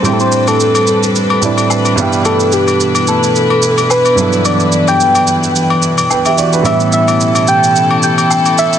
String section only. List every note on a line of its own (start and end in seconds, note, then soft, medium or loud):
0.00 1.94 G3 medium
0.00 1.94 C4 medium
0.00 6.61 D4 medium
0.00 1.94 A4 medium
0.00 6.62 B4 medium
1.98 8.79 B2 medium
1.98 8.79 E3 medium
1.98 6.62 E4 medium
6.65 8.79 C#4 medium
6.65 8.79 E4 medium
6.65 8.79 A4 medium